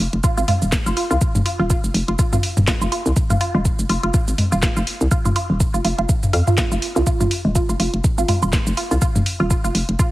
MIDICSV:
0, 0, Header, 1, 4, 480
1, 0, Start_track
1, 0, Key_signature, -4, "minor"
1, 0, Tempo, 487805
1, 1193, Time_signature, 4, 2, 24, 8
1, 9952, End_track
2, 0, Start_track
2, 0, Title_t, "Synth arpeggio sound"
2, 0, Program_c, 0, 84
2, 233, Note_on_c, 0, 65, 87
2, 290, Note_off_c, 0, 65, 0
2, 369, Note_on_c, 0, 65, 77
2, 398, Note_off_c, 0, 65, 0
2, 473, Note_on_c, 0, 65, 77
2, 495, Note_off_c, 0, 65, 0
2, 849, Note_on_c, 0, 65, 83
2, 892, Note_off_c, 0, 65, 0
2, 953, Note_on_c, 0, 65, 77
2, 991, Note_off_c, 0, 65, 0
2, 1089, Note_on_c, 0, 65, 78
2, 1108, Note_off_c, 0, 65, 0
2, 1433, Note_on_c, 0, 65, 78
2, 1490, Note_off_c, 0, 65, 0
2, 1569, Note_on_c, 0, 65, 82
2, 1598, Note_off_c, 0, 65, 0
2, 1673, Note_on_c, 0, 65, 85
2, 1696, Note_off_c, 0, 65, 0
2, 2051, Note_on_c, 0, 65, 75
2, 2093, Note_off_c, 0, 65, 0
2, 2154, Note_on_c, 0, 65, 83
2, 2191, Note_off_c, 0, 65, 0
2, 2291, Note_on_c, 0, 65, 76
2, 2311, Note_off_c, 0, 65, 0
2, 2634, Note_on_c, 0, 65, 80
2, 2690, Note_off_c, 0, 65, 0
2, 2770, Note_on_c, 0, 65, 81
2, 2799, Note_off_c, 0, 65, 0
2, 2873, Note_on_c, 0, 65, 77
2, 2896, Note_off_c, 0, 65, 0
2, 3251, Note_on_c, 0, 65, 78
2, 3293, Note_off_c, 0, 65, 0
2, 3353, Note_on_c, 0, 65, 78
2, 3391, Note_off_c, 0, 65, 0
2, 3489, Note_on_c, 0, 65, 80
2, 3509, Note_off_c, 0, 65, 0
2, 3833, Note_on_c, 0, 65, 77
2, 3890, Note_off_c, 0, 65, 0
2, 3970, Note_on_c, 0, 65, 80
2, 3998, Note_off_c, 0, 65, 0
2, 4073, Note_on_c, 0, 65, 82
2, 4096, Note_off_c, 0, 65, 0
2, 4449, Note_on_c, 0, 65, 74
2, 4492, Note_off_c, 0, 65, 0
2, 4553, Note_on_c, 0, 65, 83
2, 4591, Note_off_c, 0, 65, 0
2, 4690, Note_on_c, 0, 65, 82
2, 4710, Note_off_c, 0, 65, 0
2, 5032, Note_on_c, 0, 65, 84
2, 5090, Note_off_c, 0, 65, 0
2, 5171, Note_on_c, 0, 65, 77
2, 5199, Note_off_c, 0, 65, 0
2, 5274, Note_on_c, 0, 65, 81
2, 5296, Note_off_c, 0, 65, 0
2, 5649, Note_on_c, 0, 65, 76
2, 5693, Note_off_c, 0, 65, 0
2, 5753, Note_on_c, 0, 65, 77
2, 5791, Note_off_c, 0, 65, 0
2, 5891, Note_on_c, 0, 65, 72
2, 5910, Note_off_c, 0, 65, 0
2, 6233, Note_on_c, 0, 77, 79
2, 6256, Note_off_c, 0, 77, 0
2, 6371, Note_on_c, 0, 65, 73
2, 6399, Note_off_c, 0, 65, 0
2, 6474, Note_on_c, 0, 65, 86
2, 6511, Note_off_c, 0, 65, 0
2, 6610, Note_on_c, 0, 65, 82
2, 6638, Note_off_c, 0, 65, 0
2, 6850, Note_on_c, 0, 65, 79
2, 6879, Note_off_c, 0, 65, 0
2, 6954, Note_on_c, 0, 65, 87
2, 6991, Note_off_c, 0, 65, 0
2, 7090, Note_on_c, 0, 65, 81
2, 7110, Note_off_c, 0, 65, 0
2, 7434, Note_on_c, 0, 65, 80
2, 7491, Note_off_c, 0, 65, 0
2, 7571, Note_on_c, 0, 65, 78
2, 7599, Note_off_c, 0, 65, 0
2, 7673, Note_on_c, 0, 65, 74
2, 7696, Note_off_c, 0, 65, 0
2, 8051, Note_on_c, 0, 65, 77
2, 8093, Note_off_c, 0, 65, 0
2, 8154, Note_on_c, 0, 65, 79
2, 8192, Note_off_c, 0, 65, 0
2, 8291, Note_on_c, 0, 65, 74
2, 8311, Note_off_c, 0, 65, 0
2, 8633, Note_on_c, 0, 65, 74
2, 8690, Note_off_c, 0, 65, 0
2, 8770, Note_on_c, 0, 65, 77
2, 8798, Note_off_c, 0, 65, 0
2, 8872, Note_on_c, 0, 65, 82
2, 8895, Note_off_c, 0, 65, 0
2, 9250, Note_on_c, 0, 65, 80
2, 9293, Note_off_c, 0, 65, 0
2, 9352, Note_on_c, 0, 65, 82
2, 9391, Note_off_c, 0, 65, 0
2, 9490, Note_on_c, 0, 65, 79
2, 9510, Note_off_c, 0, 65, 0
2, 9833, Note_on_c, 0, 65, 85
2, 9890, Note_off_c, 0, 65, 0
2, 9952, End_track
3, 0, Start_track
3, 0, Title_t, "FM bass"
3, 0, Program_c, 1, 39
3, 130, Note_on_c, 1, 29, 86
3, 192, Note_off_c, 1, 29, 0
3, 371, Note_on_c, 1, 32, 88
3, 432, Note_off_c, 1, 32, 0
3, 610, Note_on_c, 1, 27, 88
3, 741, Note_off_c, 1, 27, 0
3, 849, Note_on_c, 1, 29, 108
3, 912, Note_off_c, 1, 29, 0
3, 1090, Note_on_c, 1, 36, 103
3, 1152, Note_off_c, 1, 36, 0
3, 1329, Note_on_c, 1, 29, 98
3, 1391, Note_off_c, 1, 29, 0
3, 1569, Note_on_c, 1, 27, 99
3, 1701, Note_off_c, 1, 27, 0
3, 1810, Note_on_c, 1, 29, 83
3, 1872, Note_off_c, 1, 29, 0
3, 1912, Note_on_c, 1, 29, 100
3, 1995, Note_off_c, 1, 29, 0
3, 2049, Note_on_c, 1, 29, 83
3, 2112, Note_off_c, 1, 29, 0
3, 2289, Note_on_c, 1, 32, 91
3, 2351, Note_off_c, 1, 32, 0
3, 2529, Note_on_c, 1, 27, 91
3, 2661, Note_off_c, 1, 27, 0
3, 2769, Note_on_c, 1, 29, 107
3, 2831, Note_off_c, 1, 29, 0
3, 3009, Note_on_c, 1, 36, 108
3, 3071, Note_off_c, 1, 36, 0
3, 3250, Note_on_c, 1, 29, 99
3, 3312, Note_off_c, 1, 29, 0
3, 3490, Note_on_c, 1, 27, 102
3, 3621, Note_off_c, 1, 27, 0
3, 3730, Note_on_c, 1, 29, 85
3, 3792, Note_off_c, 1, 29, 0
3, 3833, Note_on_c, 1, 29, 98
3, 3915, Note_off_c, 1, 29, 0
3, 3970, Note_on_c, 1, 29, 82
3, 4032, Note_off_c, 1, 29, 0
3, 4210, Note_on_c, 1, 32, 83
3, 4272, Note_off_c, 1, 32, 0
3, 4451, Note_on_c, 1, 27, 92
3, 4581, Note_off_c, 1, 27, 0
3, 4690, Note_on_c, 1, 29, 111
3, 4752, Note_off_c, 1, 29, 0
3, 4930, Note_on_c, 1, 36, 103
3, 4992, Note_off_c, 1, 36, 0
3, 5170, Note_on_c, 1, 29, 97
3, 5232, Note_off_c, 1, 29, 0
3, 5410, Note_on_c, 1, 27, 98
3, 5541, Note_off_c, 1, 27, 0
3, 5650, Note_on_c, 1, 29, 88
3, 5712, Note_off_c, 1, 29, 0
3, 5753, Note_on_c, 1, 29, 98
3, 5835, Note_off_c, 1, 29, 0
3, 5889, Note_on_c, 1, 29, 83
3, 5952, Note_off_c, 1, 29, 0
3, 6232, Note_on_c, 1, 41, 96
3, 6315, Note_off_c, 1, 41, 0
3, 6609, Note_on_c, 1, 29, 101
3, 6671, Note_off_c, 1, 29, 0
3, 6850, Note_on_c, 1, 36, 109
3, 6912, Note_off_c, 1, 36, 0
3, 7090, Note_on_c, 1, 29, 103
3, 7152, Note_off_c, 1, 29, 0
3, 7330, Note_on_c, 1, 27, 97
3, 7461, Note_off_c, 1, 27, 0
3, 7569, Note_on_c, 1, 29, 87
3, 7632, Note_off_c, 1, 29, 0
3, 7673, Note_on_c, 1, 29, 96
3, 7755, Note_off_c, 1, 29, 0
3, 7809, Note_on_c, 1, 29, 81
3, 7872, Note_off_c, 1, 29, 0
3, 8050, Note_on_c, 1, 32, 86
3, 8112, Note_off_c, 1, 32, 0
3, 8290, Note_on_c, 1, 27, 92
3, 8421, Note_off_c, 1, 27, 0
3, 8529, Note_on_c, 1, 29, 106
3, 8591, Note_off_c, 1, 29, 0
3, 8770, Note_on_c, 1, 36, 103
3, 8832, Note_off_c, 1, 36, 0
3, 9010, Note_on_c, 1, 29, 105
3, 9072, Note_off_c, 1, 29, 0
3, 9250, Note_on_c, 1, 27, 99
3, 9381, Note_off_c, 1, 27, 0
3, 9490, Note_on_c, 1, 29, 85
3, 9552, Note_off_c, 1, 29, 0
3, 9592, Note_on_c, 1, 29, 97
3, 9675, Note_off_c, 1, 29, 0
3, 9729, Note_on_c, 1, 29, 86
3, 9792, Note_off_c, 1, 29, 0
3, 9952, End_track
4, 0, Start_track
4, 0, Title_t, "Drums"
4, 129, Note_on_c, 9, 42, 36
4, 227, Note_off_c, 9, 42, 0
4, 232, Note_on_c, 9, 82, 68
4, 233, Note_on_c, 9, 36, 122
4, 331, Note_off_c, 9, 82, 0
4, 332, Note_off_c, 9, 36, 0
4, 369, Note_on_c, 9, 82, 45
4, 468, Note_off_c, 9, 82, 0
4, 472, Note_on_c, 9, 46, 83
4, 473, Note_on_c, 9, 45, 81
4, 473, Note_on_c, 9, 63, 49
4, 571, Note_off_c, 9, 45, 0
4, 571, Note_off_c, 9, 46, 0
4, 571, Note_off_c, 9, 63, 0
4, 609, Note_on_c, 9, 82, 31
4, 707, Note_off_c, 9, 82, 0
4, 712, Note_on_c, 9, 38, 107
4, 712, Note_on_c, 9, 82, 67
4, 713, Note_on_c, 9, 36, 120
4, 810, Note_off_c, 9, 38, 0
4, 810, Note_off_c, 9, 82, 0
4, 812, Note_off_c, 9, 36, 0
4, 849, Note_on_c, 9, 82, 45
4, 947, Note_off_c, 9, 82, 0
4, 952, Note_on_c, 9, 46, 90
4, 1051, Note_off_c, 9, 46, 0
4, 1090, Note_on_c, 9, 82, 31
4, 1189, Note_off_c, 9, 82, 0
4, 1192, Note_on_c, 9, 82, 66
4, 1194, Note_on_c, 9, 36, 122
4, 1291, Note_off_c, 9, 82, 0
4, 1292, Note_off_c, 9, 36, 0
4, 1329, Note_on_c, 9, 45, 98
4, 1330, Note_on_c, 9, 82, 44
4, 1428, Note_off_c, 9, 45, 0
4, 1428, Note_off_c, 9, 82, 0
4, 1433, Note_on_c, 9, 46, 80
4, 1531, Note_off_c, 9, 46, 0
4, 1673, Note_on_c, 9, 82, 69
4, 1674, Note_on_c, 9, 36, 124
4, 1771, Note_off_c, 9, 82, 0
4, 1772, Note_off_c, 9, 36, 0
4, 1810, Note_on_c, 9, 82, 43
4, 1908, Note_off_c, 9, 82, 0
4, 1913, Note_on_c, 9, 46, 90
4, 2012, Note_off_c, 9, 46, 0
4, 2050, Note_on_c, 9, 42, 41
4, 2148, Note_off_c, 9, 42, 0
4, 2153, Note_on_c, 9, 36, 121
4, 2153, Note_on_c, 9, 82, 62
4, 2251, Note_off_c, 9, 82, 0
4, 2252, Note_off_c, 9, 36, 0
4, 2289, Note_on_c, 9, 45, 90
4, 2290, Note_on_c, 9, 82, 43
4, 2388, Note_off_c, 9, 45, 0
4, 2388, Note_off_c, 9, 82, 0
4, 2393, Note_on_c, 9, 46, 79
4, 2491, Note_off_c, 9, 46, 0
4, 2530, Note_on_c, 9, 45, 98
4, 2530, Note_on_c, 9, 82, 31
4, 2628, Note_off_c, 9, 45, 0
4, 2628, Note_off_c, 9, 82, 0
4, 2632, Note_on_c, 9, 38, 111
4, 2632, Note_on_c, 9, 82, 63
4, 2633, Note_on_c, 9, 36, 127
4, 2731, Note_off_c, 9, 38, 0
4, 2731, Note_off_c, 9, 82, 0
4, 2732, Note_off_c, 9, 36, 0
4, 2769, Note_on_c, 9, 82, 43
4, 2868, Note_off_c, 9, 82, 0
4, 2873, Note_on_c, 9, 46, 89
4, 2972, Note_off_c, 9, 46, 0
4, 3010, Note_on_c, 9, 82, 32
4, 3109, Note_off_c, 9, 82, 0
4, 3113, Note_on_c, 9, 36, 127
4, 3113, Note_on_c, 9, 82, 61
4, 3211, Note_off_c, 9, 82, 0
4, 3212, Note_off_c, 9, 36, 0
4, 3249, Note_on_c, 9, 45, 97
4, 3249, Note_on_c, 9, 82, 45
4, 3347, Note_off_c, 9, 45, 0
4, 3348, Note_off_c, 9, 82, 0
4, 3353, Note_on_c, 9, 46, 78
4, 3451, Note_off_c, 9, 46, 0
4, 3489, Note_on_c, 9, 63, 78
4, 3587, Note_off_c, 9, 63, 0
4, 3592, Note_on_c, 9, 82, 64
4, 3593, Note_on_c, 9, 36, 121
4, 3691, Note_off_c, 9, 36, 0
4, 3691, Note_off_c, 9, 82, 0
4, 3729, Note_on_c, 9, 82, 42
4, 3827, Note_off_c, 9, 82, 0
4, 3832, Note_on_c, 9, 46, 82
4, 3930, Note_off_c, 9, 46, 0
4, 3970, Note_on_c, 9, 42, 38
4, 4068, Note_off_c, 9, 42, 0
4, 4072, Note_on_c, 9, 82, 63
4, 4073, Note_on_c, 9, 36, 127
4, 4170, Note_off_c, 9, 82, 0
4, 4171, Note_off_c, 9, 36, 0
4, 4209, Note_on_c, 9, 82, 40
4, 4308, Note_off_c, 9, 82, 0
4, 4312, Note_on_c, 9, 46, 80
4, 4313, Note_on_c, 9, 45, 77
4, 4313, Note_on_c, 9, 63, 53
4, 4411, Note_off_c, 9, 45, 0
4, 4411, Note_off_c, 9, 46, 0
4, 4411, Note_off_c, 9, 63, 0
4, 4450, Note_on_c, 9, 82, 30
4, 4548, Note_off_c, 9, 82, 0
4, 4552, Note_on_c, 9, 38, 105
4, 4552, Note_on_c, 9, 82, 62
4, 4553, Note_on_c, 9, 36, 127
4, 4651, Note_off_c, 9, 36, 0
4, 4651, Note_off_c, 9, 38, 0
4, 4651, Note_off_c, 9, 82, 0
4, 4689, Note_on_c, 9, 82, 42
4, 4788, Note_off_c, 9, 82, 0
4, 4792, Note_on_c, 9, 46, 85
4, 4890, Note_off_c, 9, 46, 0
4, 4929, Note_on_c, 9, 82, 30
4, 5027, Note_off_c, 9, 82, 0
4, 5031, Note_on_c, 9, 82, 63
4, 5032, Note_on_c, 9, 36, 127
4, 5130, Note_off_c, 9, 82, 0
4, 5131, Note_off_c, 9, 36, 0
4, 5168, Note_on_c, 9, 82, 40
4, 5170, Note_on_c, 9, 45, 94
4, 5267, Note_off_c, 9, 82, 0
4, 5268, Note_off_c, 9, 45, 0
4, 5272, Note_on_c, 9, 46, 79
4, 5370, Note_off_c, 9, 46, 0
4, 5512, Note_on_c, 9, 82, 64
4, 5513, Note_on_c, 9, 36, 124
4, 5611, Note_off_c, 9, 36, 0
4, 5611, Note_off_c, 9, 82, 0
4, 5649, Note_on_c, 9, 82, 40
4, 5747, Note_off_c, 9, 82, 0
4, 5752, Note_on_c, 9, 46, 90
4, 5851, Note_off_c, 9, 46, 0
4, 5889, Note_on_c, 9, 42, 39
4, 5988, Note_off_c, 9, 42, 0
4, 5992, Note_on_c, 9, 82, 63
4, 5993, Note_on_c, 9, 36, 119
4, 6091, Note_off_c, 9, 36, 0
4, 6091, Note_off_c, 9, 82, 0
4, 6129, Note_on_c, 9, 82, 40
4, 6130, Note_on_c, 9, 45, 85
4, 6228, Note_off_c, 9, 82, 0
4, 6229, Note_off_c, 9, 45, 0
4, 6232, Note_on_c, 9, 46, 77
4, 6330, Note_off_c, 9, 46, 0
4, 6370, Note_on_c, 9, 45, 91
4, 6370, Note_on_c, 9, 82, 29
4, 6468, Note_off_c, 9, 45, 0
4, 6468, Note_off_c, 9, 82, 0
4, 6472, Note_on_c, 9, 38, 106
4, 6472, Note_on_c, 9, 82, 58
4, 6473, Note_on_c, 9, 36, 127
4, 6571, Note_off_c, 9, 36, 0
4, 6571, Note_off_c, 9, 38, 0
4, 6571, Note_off_c, 9, 82, 0
4, 6609, Note_on_c, 9, 82, 41
4, 6708, Note_off_c, 9, 82, 0
4, 6713, Note_on_c, 9, 46, 89
4, 6811, Note_off_c, 9, 46, 0
4, 6850, Note_on_c, 9, 82, 29
4, 6948, Note_off_c, 9, 82, 0
4, 6953, Note_on_c, 9, 36, 120
4, 6953, Note_on_c, 9, 82, 62
4, 7051, Note_off_c, 9, 36, 0
4, 7051, Note_off_c, 9, 82, 0
4, 7090, Note_on_c, 9, 45, 89
4, 7090, Note_on_c, 9, 82, 42
4, 7188, Note_off_c, 9, 45, 0
4, 7188, Note_off_c, 9, 82, 0
4, 7193, Note_on_c, 9, 46, 79
4, 7291, Note_off_c, 9, 46, 0
4, 7329, Note_on_c, 9, 63, 72
4, 7427, Note_off_c, 9, 63, 0
4, 7433, Note_on_c, 9, 36, 117
4, 7433, Note_on_c, 9, 82, 64
4, 7531, Note_off_c, 9, 36, 0
4, 7531, Note_off_c, 9, 82, 0
4, 7570, Note_on_c, 9, 82, 39
4, 7668, Note_off_c, 9, 82, 0
4, 7672, Note_on_c, 9, 46, 92
4, 7771, Note_off_c, 9, 46, 0
4, 7809, Note_on_c, 9, 42, 39
4, 7908, Note_off_c, 9, 42, 0
4, 7912, Note_on_c, 9, 82, 61
4, 7913, Note_on_c, 9, 36, 124
4, 8011, Note_off_c, 9, 36, 0
4, 8011, Note_off_c, 9, 82, 0
4, 8049, Note_on_c, 9, 82, 43
4, 8148, Note_off_c, 9, 82, 0
4, 8152, Note_on_c, 9, 45, 77
4, 8152, Note_on_c, 9, 46, 85
4, 8152, Note_on_c, 9, 63, 51
4, 8250, Note_off_c, 9, 45, 0
4, 8250, Note_off_c, 9, 46, 0
4, 8250, Note_off_c, 9, 63, 0
4, 8289, Note_on_c, 9, 82, 29
4, 8388, Note_off_c, 9, 82, 0
4, 8392, Note_on_c, 9, 38, 102
4, 8392, Note_on_c, 9, 82, 62
4, 8393, Note_on_c, 9, 36, 121
4, 8491, Note_off_c, 9, 36, 0
4, 8491, Note_off_c, 9, 38, 0
4, 8491, Note_off_c, 9, 82, 0
4, 8529, Note_on_c, 9, 82, 41
4, 8627, Note_off_c, 9, 82, 0
4, 8632, Note_on_c, 9, 46, 89
4, 8730, Note_off_c, 9, 46, 0
4, 8769, Note_on_c, 9, 82, 29
4, 8868, Note_off_c, 9, 82, 0
4, 8872, Note_on_c, 9, 82, 64
4, 8873, Note_on_c, 9, 36, 114
4, 8970, Note_off_c, 9, 82, 0
4, 8971, Note_off_c, 9, 36, 0
4, 9008, Note_on_c, 9, 45, 94
4, 9010, Note_on_c, 9, 82, 44
4, 9106, Note_off_c, 9, 45, 0
4, 9108, Note_off_c, 9, 82, 0
4, 9113, Note_on_c, 9, 46, 82
4, 9211, Note_off_c, 9, 46, 0
4, 9352, Note_on_c, 9, 82, 64
4, 9353, Note_on_c, 9, 36, 118
4, 9451, Note_off_c, 9, 36, 0
4, 9451, Note_off_c, 9, 82, 0
4, 9489, Note_on_c, 9, 82, 42
4, 9588, Note_off_c, 9, 82, 0
4, 9593, Note_on_c, 9, 46, 92
4, 9691, Note_off_c, 9, 46, 0
4, 9730, Note_on_c, 9, 42, 37
4, 9828, Note_off_c, 9, 42, 0
4, 9833, Note_on_c, 9, 36, 113
4, 9833, Note_on_c, 9, 82, 63
4, 9931, Note_off_c, 9, 36, 0
4, 9931, Note_off_c, 9, 82, 0
4, 9952, End_track
0, 0, End_of_file